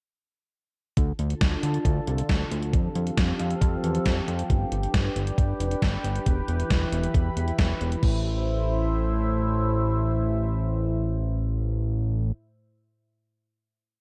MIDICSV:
0, 0, Header, 1, 4, 480
1, 0, Start_track
1, 0, Key_signature, 0, "minor"
1, 0, Tempo, 441176
1, 1055, Time_signature, 4, 2, 24, 8
1, 15235, End_track
2, 0, Start_track
2, 0, Title_t, "Analog synth pad"
2, 0, Program_c, 0, 89
2, 1056, Note_on_c, 0, 65, 72
2, 1057, Note_on_c, 0, 50, 82
2, 1057, Note_on_c, 0, 62, 75
2, 1057, Note_on_c, 0, 69, 74
2, 1057, Note_on_c, 0, 81, 90
2, 2956, Note_off_c, 0, 65, 0
2, 2957, Note_off_c, 0, 50, 0
2, 2957, Note_off_c, 0, 62, 0
2, 2957, Note_off_c, 0, 69, 0
2, 2957, Note_off_c, 0, 81, 0
2, 2974, Note_on_c, 0, 53, 80
2, 2974, Note_on_c, 0, 60, 74
2, 2974, Note_on_c, 0, 67, 75
2, 2974, Note_on_c, 0, 69, 76
2, 2976, Note_on_c, 0, 77, 90
2, 4875, Note_off_c, 0, 60, 0
2, 4875, Note_off_c, 0, 69, 0
2, 4876, Note_off_c, 0, 53, 0
2, 4876, Note_off_c, 0, 77, 0
2, 4898, Note_on_c, 0, 62, 81
2, 4898, Note_on_c, 0, 71, 90
2, 6797, Note_off_c, 0, 62, 0
2, 6814, Note_on_c, 0, 52, 83
2, 6814, Note_on_c, 0, 64, 78
2, 6815, Note_on_c, 0, 83, 90
2, 8691, Note_off_c, 0, 67, 0
2, 8698, Note_off_c, 0, 71, 0
2, 8715, Note_off_c, 0, 64, 0
2, 8716, Note_off_c, 0, 52, 0
2, 8716, Note_off_c, 0, 83, 0
2, 8735, Note_on_c, 0, 72, 75
2, 8735, Note_on_c, 0, 76, 90
2, 8736, Note_on_c, 0, 45, 83
2, 8736, Note_on_c, 0, 57, 78
2, 8736, Note_on_c, 0, 64, 74
2, 13402, Note_off_c, 0, 72, 0
2, 13402, Note_off_c, 0, 76, 0
2, 13403, Note_off_c, 0, 45, 0
2, 13403, Note_off_c, 0, 57, 0
2, 13403, Note_off_c, 0, 64, 0
2, 15235, End_track
3, 0, Start_track
3, 0, Title_t, "Analog synth bass"
3, 0, Program_c, 1, 38
3, 1056, Note_on_c, 1, 38, 100
3, 1224, Note_off_c, 1, 38, 0
3, 1296, Note_on_c, 1, 38, 93
3, 1464, Note_off_c, 1, 38, 0
3, 1535, Note_on_c, 1, 38, 97
3, 1703, Note_off_c, 1, 38, 0
3, 1776, Note_on_c, 1, 38, 99
3, 1944, Note_off_c, 1, 38, 0
3, 2013, Note_on_c, 1, 38, 99
3, 2182, Note_off_c, 1, 38, 0
3, 2255, Note_on_c, 1, 36, 94
3, 2423, Note_off_c, 1, 36, 0
3, 2494, Note_on_c, 1, 38, 97
3, 2662, Note_off_c, 1, 38, 0
3, 2736, Note_on_c, 1, 38, 101
3, 2975, Note_on_c, 1, 41, 106
3, 2992, Note_off_c, 1, 38, 0
3, 3143, Note_off_c, 1, 41, 0
3, 3216, Note_on_c, 1, 41, 95
3, 3384, Note_off_c, 1, 41, 0
3, 3455, Note_on_c, 1, 41, 102
3, 3623, Note_off_c, 1, 41, 0
3, 3696, Note_on_c, 1, 41, 96
3, 3864, Note_off_c, 1, 41, 0
3, 3932, Note_on_c, 1, 41, 100
3, 4101, Note_off_c, 1, 41, 0
3, 4175, Note_on_c, 1, 40, 97
3, 4343, Note_off_c, 1, 40, 0
3, 4413, Note_on_c, 1, 41, 98
3, 4582, Note_off_c, 1, 41, 0
3, 4655, Note_on_c, 1, 41, 99
3, 4823, Note_off_c, 1, 41, 0
3, 4895, Note_on_c, 1, 31, 103
3, 5063, Note_off_c, 1, 31, 0
3, 5135, Note_on_c, 1, 31, 98
3, 5303, Note_off_c, 1, 31, 0
3, 5375, Note_on_c, 1, 31, 104
3, 5543, Note_off_c, 1, 31, 0
3, 5615, Note_on_c, 1, 31, 97
3, 5783, Note_off_c, 1, 31, 0
3, 5853, Note_on_c, 1, 31, 102
3, 6022, Note_off_c, 1, 31, 0
3, 6094, Note_on_c, 1, 29, 95
3, 6263, Note_off_c, 1, 29, 0
3, 6334, Note_on_c, 1, 31, 107
3, 6502, Note_off_c, 1, 31, 0
3, 6574, Note_on_c, 1, 31, 102
3, 6742, Note_off_c, 1, 31, 0
3, 6815, Note_on_c, 1, 28, 107
3, 6983, Note_off_c, 1, 28, 0
3, 7054, Note_on_c, 1, 28, 106
3, 7222, Note_off_c, 1, 28, 0
3, 7295, Note_on_c, 1, 28, 101
3, 7463, Note_off_c, 1, 28, 0
3, 7534, Note_on_c, 1, 28, 108
3, 7702, Note_off_c, 1, 28, 0
3, 7773, Note_on_c, 1, 28, 103
3, 7942, Note_off_c, 1, 28, 0
3, 8015, Note_on_c, 1, 28, 93
3, 8183, Note_off_c, 1, 28, 0
3, 8253, Note_on_c, 1, 28, 103
3, 8422, Note_off_c, 1, 28, 0
3, 8496, Note_on_c, 1, 28, 95
3, 8663, Note_off_c, 1, 28, 0
3, 8735, Note_on_c, 1, 33, 100
3, 13402, Note_off_c, 1, 33, 0
3, 15235, End_track
4, 0, Start_track
4, 0, Title_t, "Drums"
4, 1056, Note_on_c, 9, 36, 108
4, 1056, Note_on_c, 9, 42, 73
4, 1165, Note_off_c, 9, 36, 0
4, 1165, Note_off_c, 9, 42, 0
4, 1294, Note_on_c, 9, 42, 72
4, 1403, Note_off_c, 9, 42, 0
4, 1417, Note_on_c, 9, 42, 53
4, 1526, Note_off_c, 9, 42, 0
4, 1535, Note_on_c, 9, 38, 110
4, 1535, Note_on_c, 9, 42, 72
4, 1536, Note_on_c, 9, 36, 106
4, 1644, Note_off_c, 9, 36, 0
4, 1644, Note_off_c, 9, 38, 0
4, 1644, Note_off_c, 9, 42, 0
4, 1775, Note_on_c, 9, 42, 83
4, 1884, Note_off_c, 9, 42, 0
4, 1894, Note_on_c, 9, 42, 56
4, 2003, Note_off_c, 9, 42, 0
4, 2013, Note_on_c, 9, 36, 111
4, 2016, Note_on_c, 9, 42, 79
4, 2122, Note_off_c, 9, 36, 0
4, 2125, Note_off_c, 9, 42, 0
4, 2257, Note_on_c, 9, 42, 79
4, 2365, Note_off_c, 9, 42, 0
4, 2375, Note_on_c, 9, 42, 55
4, 2484, Note_off_c, 9, 42, 0
4, 2493, Note_on_c, 9, 42, 65
4, 2494, Note_on_c, 9, 36, 103
4, 2496, Note_on_c, 9, 38, 108
4, 2602, Note_off_c, 9, 42, 0
4, 2603, Note_off_c, 9, 36, 0
4, 2605, Note_off_c, 9, 38, 0
4, 2736, Note_on_c, 9, 42, 69
4, 2845, Note_off_c, 9, 42, 0
4, 2857, Note_on_c, 9, 42, 59
4, 2965, Note_off_c, 9, 42, 0
4, 2975, Note_on_c, 9, 36, 111
4, 2975, Note_on_c, 9, 42, 74
4, 3084, Note_off_c, 9, 36, 0
4, 3084, Note_off_c, 9, 42, 0
4, 3214, Note_on_c, 9, 42, 72
4, 3323, Note_off_c, 9, 42, 0
4, 3338, Note_on_c, 9, 42, 54
4, 3446, Note_off_c, 9, 42, 0
4, 3454, Note_on_c, 9, 38, 111
4, 3455, Note_on_c, 9, 36, 109
4, 3455, Note_on_c, 9, 42, 75
4, 3563, Note_off_c, 9, 38, 0
4, 3563, Note_off_c, 9, 42, 0
4, 3564, Note_off_c, 9, 36, 0
4, 3694, Note_on_c, 9, 42, 86
4, 3803, Note_off_c, 9, 42, 0
4, 3813, Note_on_c, 9, 42, 56
4, 3922, Note_off_c, 9, 42, 0
4, 3933, Note_on_c, 9, 36, 112
4, 3935, Note_on_c, 9, 42, 78
4, 4041, Note_off_c, 9, 36, 0
4, 4044, Note_off_c, 9, 42, 0
4, 4176, Note_on_c, 9, 42, 81
4, 4285, Note_off_c, 9, 42, 0
4, 4295, Note_on_c, 9, 42, 58
4, 4403, Note_off_c, 9, 42, 0
4, 4412, Note_on_c, 9, 42, 63
4, 4413, Note_on_c, 9, 36, 104
4, 4415, Note_on_c, 9, 38, 113
4, 4521, Note_off_c, 9, 42, 0
4, 4522, Note_off_c, 9, 36, 0
4, 4524, Note_off_c, 9, 38, 0
4, 4657, Note_on_c, 9, 42, 72
4, 4765, Note_off_c, 9, 42, 0
4, 4776, Note_on_c, 9, 42, 55
4, 4885, Note_off_c, 9, 42, 0
4, 4895, Note_on_c, 9, 36, 105
4, 4895, Note_on_c, 9, 42, 73
4, 5004, Note_off_c, 9, 36, 0
4, 5004, Note_off_c, 9, 42, 0
4, 5134, Note_on_c, 9, 42, 71
4, 5243, Note_off_c, 9, 42, 0
4, 5259, Note_on_c, 9, 42, 54
4, 5367, Note_off_c, 9, 42, 0
4, 5375, Note_on_c, 9, 36, 113
4, 5375, Note_on_c, 9, 38, 111
4, 5375, Note_on_c, 9, 42, 74
4, 5484, Note_off_c, 9, 36, 0
4, 5484, Note_off_c, 9, 38, 0
4, 5484, Note_off_c, 9, 42, 0
4, 5615, Note_on_c, 9, 42, 86
4, 5724, Note_off_c, 9, 42, 0
4, 5735, Note_on_c, 9, 42, 57
4, 5843, Note_off_c, 9, 42, 0
4, 5853, Note_on_c, 9, 36, 117
4, 5857, Note_on_c, 9, 42, 80
4, 5962, Note_off_c, 9, 36, 0
4, 5966, Note_off_c, 9, 42, 0
4, 6097, Note_on_c, 9, 42, 80
4, 6206, Note_off_c, 9, 42, 0
4, 6216, Note_on_c, 9, 42, 59
4, 6325, Note_off_c, 9, 42, 0
4, 6333, Note_on_c, 9, 42, 63
4, 6334, Note_on_c, 9, 36, 107
4, 6337, Note_on_c, 9, 38, 115
4, 6442, Note_off_c, 9, 42, 0
4, 6443, Note_off_c, 9, 36, 0
4, 6445, Note_off_c, 9, 38, 0
4, 6576, Note_on_c, 9, 42, 70
4, 6685, Note_off_c, 9, 42, 0
4, 6697, Note_on_c, 9, 42, 58
4, 6805, Note_off_c, 9, 42, 0
4, 6814, Note_on_c, 9, 42, 75
4, 6815, Note_on_c, 9, 36, 111
4, 6923, Note_off_c, 9, 42, 0
4, 6924, Note_off_c, 9, 36, 0
4, 7053, Note_on_c, 9, 42, 71
4, 7162, Note_off_c, 9, 42, 0
4, 7177, Note_on_c, 9, 42, 54
4, 7286, Note_off_c, 9, 42, 0
4, 7294, Note_on_c, 9, 38, 109
4, 7295, Note_on_c, 9, 36, 115
4, 7295, Note_on_c, 9, 42, 72
4, 7403, Note_off_c, 9, 38, 0
4, 7403, Note_off_c, 9, 42, 0
4, 7404, Note_off_c, 9, 36, 0
4, 7535, Note_on_c, 9, 42, 87
4, 7643, Note_off_c, 9, 42, 0
4, 7654, Note_on_c, 9, 42, 57
4, 7763, Note_off_c, 9, 42, 0
4, 7773, Note_on_c, 9, 36, 116
4, 7776, Note_on_c, 9, 42, 84
4, 7882, Note_off_c, 9, 36, 0
4, 7885, Note_off_c, 9, 42, 0
4, 8017, Note_on_c, 9, 42, 82
4, 8126, Note_off_c, 9, 42, 0
4, 8136, Note_on_c, 9, 42, 57
4, 8245, Note_off_c, 9, 42, 0
4, 8253, Note_on_c, 9, 42, 63
4, 8254, Note_on_c, 9, 36, 106
4, 8256, Note_on_c, 9, 38, 111
4, 8361, Note_off_c, 9, 42, 0
4, 8362, Note_off_c, 9, 36, 0
4, 8364, Note_off_c, 9, 38, 0
4, 8497, Note_on_c, 9, 42, 73
4, 8606, Note_off_c, 9, 42, 0
4, 8617, Note_on_c, 9, 42, 57
4, 8726, Note_off_c, 9, 42, 0
4, 8734, Note_on_c, 9, 49, 84
4, 8735, Note_on_c, 9, 36, 106
4, 8843, Note_off_c, 9, 49, 0
4, 8844, Note_off_c, 9, 36, 0
4, 15235, End_track
0, 0, End_of_file